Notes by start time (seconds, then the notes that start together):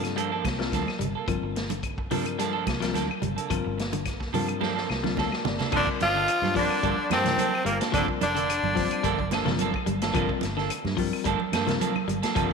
Already playing: G2 G3 C4 F4 A4
0.04 muted clean electric guitar stroke, snare, closed hi-hat, claves
0.16 F3 G3 A#3 D4 A4, closed hi-hat
0.32 F3 A#3 D4 A4
0.44 C2, muted clean electric guitar stroke, kick, snare, closed hi-hat, high conga, claves
0.59 G3 C4 F4 A#4, snare
0.72 D2 F3 A#3 D4 A4, kick, snare, closed hi-hat, high conga
0.88 muted clean electric guitar stroke, snare, claves
0.99 G1 G3, muted clean electric guitar stroke, closed hi-hat, low conga
1.15 A#3 A4
1.27 G1 F3 G3 C4 F4 A#4, kick, closed hi-hat, claves
1.42 G1, muted clean electric guitar stroke
1.56 muted clean electric guitar stroke, snare, closed hi-hat
1.70 D3, muted clean electric guitar stroke, closed hi-hat, high conga
1.83 kick, closed hi-hat, claves
1.98 muted clean electric guitar stroke, kick
2.11 G2 F3 G3 A#3 C4 D4 F4 A4 A#4, open hi-hat, high conga, low conga
2.26 muted clean electric guitar stroke, closed hi-hat, claves
2.38 F3 G3 A#3 D4 A4, snare, closed hi-hat
2.53 F3 A#3 D4 A4
2.67 C2, muted clean electric guitar stroke, kick, snare, closed hi-hat, high conga, claves
2.80 F3 G3 C4 F4 A#4, snare, closed hi-hat
2.94 D2 F3 A#3 D4 A4, snare, closed hi-hat, high conga
3.09 muted clean electric guitar stroke, claves
3.22 G1 G3, muted clean electric guitar stroke, closed hi-hat, high conga, low conga
3.36 A#3 D4 A4, closed hi-hat
3.50 G1 F3 G3 C4 F4 A#4, kick, closed hi-hat, claves
3.65 G1, muted clean electric guitar stroke
3.78 muted clean electric guitar stroke, snare, closed hi-hat
3.92 D3, muted clean electric guitar stroke, closed hi-hat, high conga
4.05 kick, snare, closed hi-hat, claves
4.20 muted clean electric guitar stroke, kick, snare
4.33 G2 F3 G3 A#3 C4 D4 F4 A4 A#4, open hi-hat, high conga, low conga
4.48 muted clean electric guitar stroke, closed hi-hat, claves
4.61 F3 G3 A#3 D4 A4, snare, high conga
4.75 F3 A#3 D4 A4, snare
4.89 C2, muted clean electric guitar stroke, snare, claves
5.03 D3 G3 C4 F4 A#4, snare, high conga
5.17 D2 A#3 D4 A4 A5, kick, snare, low conga
5.32 muted clean electric guitar stroke, snare, claves
5.45 G1 G3 D5, muted clean electric guitar stroke, snare, low conga
5.59 A#3 D4 A4, snare, low conga
5.72 G1 D3 F3 G3 A#3 C4 D4 F4 A4 A#4, muted clean electric guitar stroke, kick, crash, low conga, claves
5.76 D4
5.87 muted clean electric guitar stroke, kick
6.00 G1 F3 F4, muted clean electric guitar stroke, snare, closed hi-hat, high conga
6.15 D3 A#3 D4 A4
6.28 muted clean electric guitar stroke, closed hi-hat, claves
6.42 G2, snare, high conga
6.55 D3 F3 G3 C4 D4 F4 A#4, muted clean electric guitar stroke, kick, open hi-hat
6.60 D4
6.70 muted clean electric guitar stroke, claves
6.83 G1 F3 G3 A#3 D4 A4, kick, closed hi-hat
6.98 muted clean electric guitar stroke
7.10 G2 C3 F3 A#3 C4 D4 A4, snare, closed hi-hat, high conga, claves
7.24 F3 G3 C4 F4 A#4, snare, closed hi-hat, low conga
7.38 F3 A#3 D4 A4, closed hi-hat, high conga
7.53 muted clean electric guitar stroke, claves
7.65 G1 A#2 G3 A#3, muted clean electric guitar stroke, closed hi-hat
7.81 A#3 D4 A4, snare, closed hi-hat
7.92 G1 D3 F3 G3 A#3 C4 D4 F4 A4 A#4, kick, closed hi-hat, low conga, claves
7.96 D4
8.08 muted clean electric guitar stroke, kick
8.20 F1 D3 D4, muted clean electric guitar stroke, closed hi-hat, high conga
8.35 D3 A#3 D4 A4, closed hi-hat
8.48 muted clean electric guitar stroke, closed hi-hat, claves
8.63 G1, high conga
8.75 F3 G3 C4 F4 C5, muted clean electric guitar stroke, kick, snare, open hi-hat
8.91 muted fingered electric bass stroke, muted clean electric guitar stroke, closed hi-hat, claves
9.03 G1 F3 G3 A#3 D4 A4, kick, closed hi-hat
9.19 muted clean electric guitar stroke, kick, high conga
9.31 F3 A#3 D4 A4, snare, closed hi-hat, high conga, claves
9.45 G1 F3 G3 C4 F4 A#4, snare, low conga
9.59 F3 A#3 D4 A4, closed hi-hat, high conga
9.74 muted clean electric guitar stroke, kick, claves
9.86 G1 G3, muted clean electric guitar stroke, closed hi-hat, high conga
10.01 A#3 D4 A4, snare, closed hi-hat
10.14 G1 F3 G3 A#3 C4 D4 F4 A4 A#4, kick, closed hi-hat, low conga, claves
10.29 muted clean electric guitar stroke, kick
10.41 G1, muted clean electric guitar stroke, snare, closed hi-hat, high conga
10.57 D3 A#3 D4 A4, snare
10.70 muted clean electric guitar stroke, closed hi-hat, claves
10.84 G2, snare, high conga
10.97 F3 G3 C4 F4 A#4, muted clean electric guitar stroke, kick, open hi-hat
11.13 muted clean electric guitar stroke, claves
11.24 G1 F3 G3 A#3 D4 A4, kick, closed hi-hat
11.40 muted clean electric guitar stroke, muted fingered electric bass stroke, high conga
11.52 G2 F3 A#3 D4 A4, snare, closed hi-hat, high conga, claves
11.67 F3 G3 C4 F4 A#4, snare, closed hi-hat, low conga
11.80 F3 A#3 D4 A4, closed hi-hat, high conga
11.95 muted clean electric guitar stroke, high conga, claves
12.08 G1 G3, muted clean electric guitar stroke, closed hi-hat, high conga
12.23 A#3 D4 A4, snare, closed hi-hat
12.35 G1 F3 G3 A#3 C4 D4 F4 A4 A#4, kick, closed hi-hat, low conga, claves